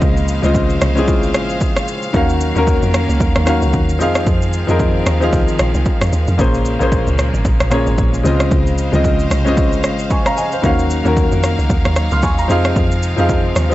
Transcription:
Already playing: string section A#2 F3 G#3 C5 F5, grand piano C#3 G#3 C4 F4 D#5
0.02 log drum bass C#2, kick, shaker
0.17 shaker
0.28 shaker
0.42 log drum bass C#2, grand piano C#3 G#3 C4 F4 D#5, shaker
0.55 kick, shaker
0.70 shaker
0.81 log drum bass C2, cross-stick, shaker
0.95 grand piano G#3 C4 C#4 E4 G#4, shaker
1.04 grand piano F4, kick, shaker
1.23 shaker
1.34 log drum bass G#1, cross-stick, shaker
1.50 shaker
1.61 kick, shaker
1.76 cross-stick, shaker
1.88 shaker
2.02 shaker
2.13 log drum bass D#2, grand piano D#3 A#3 C#4 F#4 F5, string section D#3 F#3 A#3 C#4, kick, shaker
2.29 shaker
2.41 shaker
2.55 log drum bass D#2, grand piano D#3 A#3 C#4 F#4 A#4, shaker
2.67 kick, shaker
2.82 log drum bass F2, shaker
2.94 cross-stick, shaker
3.09 log drum bass C#2, shaker
3.20 log drum bass D#2, kick, shaker
3.35 log drum bass D#2, cross-stick, shaker
3.45 grand piano D#3 A#3 C#4 F#4 F5, cross-stick, shaker
3.62 log drum bass C#2, shaker
3.73 log drum bass D#2, kick, shaker
3.89 shaker
3.99 log drum bass F2, string section D#3 F3 G#3 C4, grand piano F3 C4 D#4 G#4 F5, shaker
4.15 cross-stick, shaker
4.27 log drum bass F2, kick, shaker
4.42 shaker
4.53 shaker
4.67 log drum bass F2, grand piano F3 C4 D#4 G#4 A#4, shaker
4.80 kick, shaker
5.06 log drum bass D#2, cross-stick, shaker
5.20 grand piano F3 C4 D#4 G#4 F5, shaker
5.33 log drum bass C2, kick, shaker
5.48 shaker
5.59 log drum bass A#1, cross-stick, shaker
5.74 log drum bass C2, shaker
5.86 kick, shaker
6.01 log drum bass F2, cross-stick, shaker
6.13 log drum bass D#2, shaker
6.27 log drum bass F2, shaker
6.38 log drum bass A#1, grand piano A#2 A#3 C#4 G#4 C5, string section C#3 A#3, kick, shaker
6.54 shaker
6.65 shaker
6.79 log drum bass A#1, grand piano A#2 A#3 C#4 G#4 C5, shaker
6.92 kick, shaker
7.07 log drum bass C#2, shaker
7.19 cross-stick, shaker
7.34 log drum bass G#1, shaker
7.45 log drum bass A#1, kick, shaker
7.60 log drum bass A#1, cross-stick, shaker
7.70 grand piano A#2 A#3 C#4 G#4 C#5, cross-stick, shaker
7.87 log drum bass G#1, shaker
7.98 log drum bass A#1, kick, shaker
8.14 shaker
8.23 log drum bass C#2, grand piano C#3 G#3 C4 F4 D#5, string section C5 F5, shaker
8.40 cross-stick, shaker
8.51 log drum bass C#2, kick, shaker
8.67 shaker
8.78 shaker
8.92 log drum bass C#2, grand piano C#3 G#3 C4 F4 D#5, shaker
9.04 kick, shaker
9.19 shaker
9.31 log drum bass C2, cross-stick, shaker
9.45 grand piano G#3 C4 C#4 F4 D#5, shaker
9.57 kick, shaker
9.72 shaker
9.84 log drum bass G#1, cross-stick, shaker
9.99 shaker
10.10 grand piano G#5 C#6, kick, shaker
10.26 grand piano F5 A#5, cross-stick, shaker
10.37 grand piano D#5 G#5, shaker
10.52 grand piano C5 F5, shaker
10.62 log drum bass D#2, grand piano D#3 A#3 C#4 F#4 F5, string section F#3 A#3 D#4, kick, shaker
10.79 shaker
10.90 shaker
11.04 log drum bass D#2, grand piano D#3 A#3 C#4 F#4 A#4, shaker
11.17 kick, shaker
11.32 log drum bass F2, shaker
11.43 cross-stick, shaker
11.59 log drum bass C#2, shaker
11.70 log drum bass D#2, kick, shaker
11.85 log drum bass D#2, cross-stick, shaker
11.96 cross-stick, shaker
12.11 log drum bass C#2, grand piano C6 F6, shaker
12.23 log drum bass D#2, grand piano G#5 C#6, kick, shaker
12.39 grand piano F5 A#5, shaker
12.48 log drum bass F2, string section C3 F3 G#3, grand piano F3 C4 D#4 G#4 F5, shaker
12.65 cross-stick, shaker
12.76 log drum bass F2, kick, shaker
12.91 shaker
13.03 shaker
13.16 log drum bass F2, grand piano F3 C4 D#4 G#4 F5, shaker
13.29 kick, shaker
13.56 log drum bass D#2, cross-stick, shaker
13.70 grand piano F3 C4 D#4, shaker

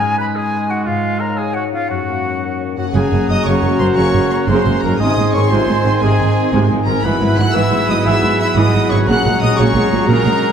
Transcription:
Already playing: harp G#2, clarinet G#3, oboe G#4, flute G#5
0.01 harp G#3
0.18 oboe B4, harp B4, flute B5
0.36 oboe G#4, harp D#5, flute G#5
0.53 harp G#4
0.68 harp D#4, oboe F#4, flute F#5
0.86 harp G#2, oboe F4, flute F5
1.04 harp G#3
1.20 oboe A#4, harp C#5, flute A#5
1.37 oboe G#4, harp G#4, flute G#5
1.54 oboe F#4, harp C#5, flute F#5
1.73 harp C#4, oboe F4, flute F5
1.88 harp F#2, oboe F#4, clarinet F#4, flute F#5
2.08 harp A#3
2.25 harp C#5
2.43 harp A#4
2.61 harp C#5
2.77 harp F#2 C#4, trumpet F#4, violin section F#5
2.81 harp A#3
2.86 harp C#4
2.90 cello section F#2, viola section C#3, trombone section C#3, violin section F#4 G#4 G#5, harp G#4
2.94 double bass section F#1, trombone section A#3, viola section A#3, clarinet C#4, french horn section G#4, trumpet G#4, oboe F#5, flute A#5
3.11 double bass section F#1, cello section F#2, viola section G#3
3.28 double bass section F#1, cello section F#2, viola section F#3, trumpet D#5, violin section D#6
3.45 double bass section F#1, cello section F#2, viola section C#3, french horn section F#4, trumpet C#5, violin section C#6
3.62 double bass section F#1, cello section F#2
3.66 viola section G#3
3.79 double bass section F#1, cello section F#2, viola section F#3, trumpet C5, violin section C6
3.95 double bass section F#1, cello section F#2, viola section C#3, trumpet C#5, violin section C#6
4.12 double bass section F#1, cello section F#2
4.17 viola section G#3
4.30 trumpet C#5, violin section C#6
4.47 double bass section F#1, cello section F#2, french horn section G#4, trumpet C5, violin section C6
4.52 viola section C#3
4.65 double bass section F#1, cello section F#2, viola section G#3
4.80 double bass section F#1, cello section F#2, harp G#2, trumpet A#4, violin section A#5
4.86 viola section F#3, harp G#3
4.91 harp C4
4.95 double bass section G#1, cello section G#2, violin section D#4, harp G#4, flute C6
5.00 viola section C3 C4, trombone section D#3 C4, clarinet D#4, trumpet D#5, oboe G#5, violin section D#6
5.17 double bass section G#1, cello section G#2, viola section G#3
5.34 double bass section G#1, cello section G#2, viola section D#3, trumpet C#5, violin section C#6
5.51 double bass section G#1, cello section G#2, viola section C3, french horn section F4, trumpet C5, violin section C6
5.68 double bass section G#1, cello section G#2, viola section G#3, french horn section D#4
5.85 double bass section G#1, cello section G#2, viola section D#3, french horn section D#4
5.99 double bass section G#1, cello section G#2, viola section C3, trumpet G#4, violin section G#5
6.18 double bass section G#1, cello section G#2, viola section G#3
6.52 double bass section G#1, cello section G#2, viola section C3, french horn section G#4
6.70 double bass section G#1, cello section G#2, viola section G#3, french horn section F4
6.85 double bass section G#1, harp G#2, cello section G#2, viola section D#3, french horn section F#4, trumpet A#4, violin section A#5
6.91 harp G#3
6.95 harp E4
7.00 double bass section G#1, clarinet E4, harp F#4, violin section F#4 G#4
7.04 cello section G#2, viola section E3 E4, trombone section F#3 B3, french horn section E4, trumpet B4, oboe F#5, violin section B5, flute B5
7.20 double bass section G#1, cello section G#2, viola section G#3
7.37 double bass section G#1, cello section G#2, viola section F#3, trumpet F#5, violin section F#6
7.54 double bass section G#1, cello section G#2, viola section E3, french horn section B4, trumpet E5, violin section E6
7.71 double bass section G#1, cello section G#2, viola section G#3
7.88 double bass section G#1, cello section G#2, viola section F#3, trumpet D#5, violin section D#6
8.04 double bass section G#1, cello section G#2, viola section E3, french horn section G#4, trumpet E5, violin section E6
8.22 double bass section G#1, cello section G#2, viola section G#3
8.40 trumpet E5, violin section E6
8.55 double bass section G#1, cello section G#2, viola section E3, trumpet D#5, violin section D#6
8.74 double bass section G#1, cello section G#2, viola section G#3
8.90 double bass section G#1, cello section G#2, harp A#2, viola section F#3, trumpet C#5, violin section C#6
8.96 harp G#3
9.00 harp C#4
9.05 double bass section A#1, cello section A#2, trombone section G#3, viola section C#4, harp F#4, clarinet G#4, flute A#5, violin section F#6
9.09 viola section C#3, trumpet F#5
9.24 double bass section A#1, cello section A#2, viola section G#3
9.41 double bass section A#1, cello section A#2, viola section F#3, trumpet D#5, violin section D#6
9.57 double bass section A#1, cello section A#2, viola section C#3, french horn section F#4, trumpet C#5, violin section C#6
9.74 double bass section A#1, cello section A#2, viola section G#3, french horn section G#4
9.91 double bass section A#1, cello section A#2, viola section F#3, french horn section F4
10.07 double bass section A#1, cello section A#2, viola section C#3, french horn section F#4, trumpet A#4, violin section A#5
10.25 double bass section A#1, cello section A#2, viola section G#3

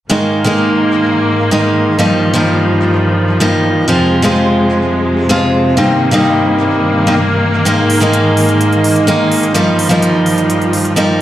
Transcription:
0.09 string section G#2 D#3 A#3, steel-string acoustic guitar D#3 G#3 A#3 D#4
0.44 steel-string acoustic guitar D#3 G#3 A#3 D#4
1.51 steel-string acoustic guitar D#3 G#3 A#3 D#4
1.99 string section G2 F3, steel-string acoustic guitar F3 G3 A#3 D#4
2.34 steel-string acoustic guitar F3 G3 A#3 D#4
3.40 steel-string acoustic guitar F3 G3 A#3 D#4
3.88 string section F2 C3 G#3, steel-string acoustic guitar F3 G#3 C4 F4
4.22 steel-string acoustic guitar F3 G#3 C4 F4
5.29 steel-string acoustic guitar F3 G#3 C4 F4
5.77 string section G2 D#3 A#3, steel-string acoustic guitar G3 A#3 C4 D#4
6.11 steel-string acoustic guitar G3 A#3 C4 D#4
7.07 steel-string acoustic guitar G3 A#3 C4 D#4
7.65 string section G#2, steel-string acoustic guitar D#3 G#3 A#3 D#4, closed hi-hat
7.90 open hi-hat
8.00 steel-string acoustic guitar D#3 G#3 A#3 D#4, closed hi-hat
8.13 closed hi-hat
8.37 open hi-hat
8.49 closed hi-hat
8.61 closed hi-hat
8.73 closed hi-hat
8.84 open hi-hat
8.96 closed hi-hat
9.07 steel-string acoustic guitar D#3 G#3 A#3 D#4, closed hi-hat
9.32 open hi-hat
9.43 closed hi-hat
9.54 string section G2 F3, steel-string acoustic guitar F3 G3 A#3 D#4, closed hi-hat
9.79 open hi-hat
9.89 steel-string acoustic guitar F3 G3 A#3 D#4, closed hi-hat
10.02 closed hi-hat
10.26 open hi-hat
10.38 closed hi-hat
10.50 closed hi-hat
10.62 closed hi-hat
10.73 open hi-hat
10.85 closed hi-hat
10.96 steel-string acoustic guitar F3 G3 A#3 D#4, closed hi-hat

